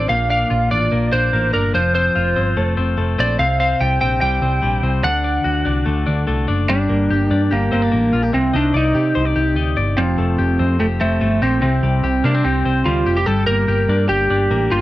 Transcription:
Already playing: F3 C4 D4 A4
0.09 A#1 A#2 F5
0.30 D4 F5
0.50 A#1 F4
0.71 A1 D4 D5
0.92 A#1 A#3
1.12 A#1 D4 C5
1.33 A1 A#3
1.53 G1 D4 A#4
1.74 F1 F3 C5
1.95 C4 C5
2.15 F1 F4
2.36 G1 C4
2.57 F1 A3
2.77 F1 C4
2.98 F1 A3
3.18 A#1 C4 D5
3.39 C2 C3 F5
3.60 C4 F5
3.81 C2 G4 G5
4.01 A#1 C4 G5
4.21 C2 G3 G5
4.42 C2 C4
4.62 A#1 G3
4.83 C2 C4
5.04 D2 D3 F#5
5.24 D4
5.44 D2 F#4
5.65 C2 D4
5.86 D2 A3
6.07 D2 D4
6.27 C2 A3
6.48 F#1 D4
6.69 G1 G3 D4
6.89 G1 A#3
7.10 G1 G4
7.31 G2 D4
7.51 G1 A#3 G4
7.72 G1 A#3 C4
7.82 D4
7.92 A1 A#3
8.13 A#1 F4
8.23 G4
8.33 C2 C3 C4
8.53 C2 D4 D#4
8.74 C2 D#4 D5
8.95 C3 G4
9.15 C2 C5
9.25 D5
9.36 C2 G4
9.56 D2 D#4
9.77 G1 D5
9.98 F1 F3 C4
10.18 F1 A3
10.39 F1 G4
10.59 F2 C4
10.80 F1 A3 G4
11.01 F1 A3 C4
11.21 G1 A3
11.42 A#1 C4 G4
11.62 C2 C3 C4
11.83 C2 G3
12.03 C2 G4
12.24 C3 A#3 D4
12.35 C4
12.44 C2 C4 G4
12.65 C2 C4
12.86 D2 G3 F4
13.06 F1 G4
13.17 G4
13.26 G1 G3 A4
13.47 G1 A#3 A#4
13.68 G1 G4
13.89 G2 D4
14.09 G1 G4
14.30 G1 D4
14.50 A1 A#3
14.71 G1 F4 G4

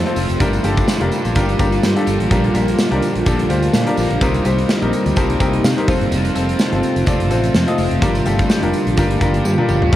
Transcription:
Already playing: C3 F3 A3 C4 F4 A4 C5 D5 D#5 F5
0.05 C4 F4 A4 C5, closed hi-hat
0.16 F1 C4 F4, open hi-hat, tambourine
0.29 F1, closed hi-hat
0.39 G1 G2 D3 G3 A#3 D4 F4 G4 A#4, kick, closed hi-hat, tambourine
0.43 G4
0.53 closed hi-hat, tambourine
0.64 G1 D4 F4 G4 A4, closed hi-hat, tambourine
0.77 kick, closed hi-hat, tambourine
0.88 snare, tambourine
1.00 F1 D4 F4 G4 A#4, closed hi-hat
1.12 closed hi-hat, tambourine
1.25 A#1, closed hi-hat, tambourine
1.35 G1 G3 D4 F4 G4 A#4, kick, closed hi-hat, tambourine
1.49 closed hi-hat
1.59 G1 D4 F4 G4 A#4, kick, closed hi-hat, tambourine
1.72 closed hi-hat, tambourine
1.83 G2, snare, tambourine
1.96 D4 F4 G4 A4, closed hi-hat
2.06 G1 D4 G4, closed hi-hat, tambourine
2.20 A1, closed hi-hat
2.30 A#1 A#2 F3 G3 A#3 D4 F4 G4 A#4, kick, closed hi-hat, tambourine
2.34 A#3
2.44 closed hi-hat
2.54 A#1 D4 F4 G4 A#4, closed hi-hat, tambourine
2.68 closed hi-hat, tambourine
2.78 snare, tambourine
2.91 C2 D4 F4 G4 A#4, closed hi-hat
3.02 closed hi-hat, tambourine
3.15 A#1, closed hi-hat
3.25 A#1 A#2 F3 A#3 D4 F4 G4 A4, kick, closed hi-hat, tambourine
3.39 closed hi-hat
3.49 D2 D4 F4 G4 C5, closed hi-hat, tambourine
3.63 closed hi-hat, tambourine
3.73 A#2, snare, tambourine
3.86 D4 F4 G4 A#4, closed hi-hat
3.97 A#1 F3 A#3, open hi-hat, tambourine
4.10 A#1, closed hi-hat
4.20 C2 C3 G3 A#3 C4 D#4 G4 A#4, kick, closed hi-hat, tambourine
4.24 C4
4.34 closed hi-hat, tambourine
4.45 C2 C4 D#4 G4 C5, closed hi-hat, tambourine
4.58 closed hi-hat
4.69 snare, tambourine
4.81 A#1 C4 D#4 G4 A#4, closed hi-hat
4.93 closed hi-hat, tambourine
5.06 D2, closed hi-hat, tambourine
5.16 C2 C3 G3 C4 D#4 G4 A#4 A5, kick, closed hi-hat, tambourine
5.30 closed hi-hat
5.40 C2 C4 D#4 G4 A#4 G5, kick, closed hi-hat, tambourine
5.53 closed hi-hat
5.64 C3 F5, snare, tambourine
5.77 C4 D#4 G4 A#4, closed hi-hat
5.87 F1 F3 A3 C4 F4 A4 C5, kick, open hi-hat, tambourine
6.01 G1, closed hi-hat
6.11 F1 F3 C4, closed hi-hat, tambourine
6.15 F4
6.25 closed hi-hat, tambourine
6.35 F1 C4 F4 A4 C5, closed hi-hat, tambourine
6.49 closed hi-hat
6.59 snare, tambourine
6.72 G1 C4 F4 A4 C5, closed hi-hat
6.83 closed hi-hat, tambourine
6.96 F1, closed hi-hat, tambourine
7.06 F1 F3 C4 F4 A4 D5, kick, closed hi-hat, tambourine
7.20 closed hi-hat
7.30 A1 C4 F4 A4 C5, closed hi-hat, tambourine
7.44 closed hi-hat, tambourine
7.54 F2, snare, tambourine
7.67 C4 F4 A4 D#5, closed hi-hat
7.77 F1 C4 F4, open hi-hat, tambourine
7.91 F1, closed hi-hat
8.01 G1 G2 D3 G3 A#3 D4 F4 G4 A#4, kick, closed hi-hat, tambourine
8.05 G4
8.15 closed hi-hat, tambourine
8.25 G1 D4 F4 G4 A4, closed hi-hat, tambourine
8.39 kick, closed hi-hat, tambourine
8.50 snare, tambourine
8.62 F1 D4 F4 G4 A#4, closed hi-hat
8.73 closed hi-hat, tambourine
8.87 A#1, closed hi-hat
8.97 G1 G3 D4 F4 G4 A#4, kick, closed hi-hat, tambourine
9.11 closed hi-hat
9.21 G1 D4 F4 G4 A#4, kick, closed hi-hat, tambourine
9.34 closed hi-hat
9.45 G2, high tom, tambourine
9.58 D4 F4 G4 A#4, mid tom
9.68 G1 D4 G4, mid tom, tambourine
9.82 A1, floor tom
9.92 A#1 A#2 D4 F4 G4, kick, crash

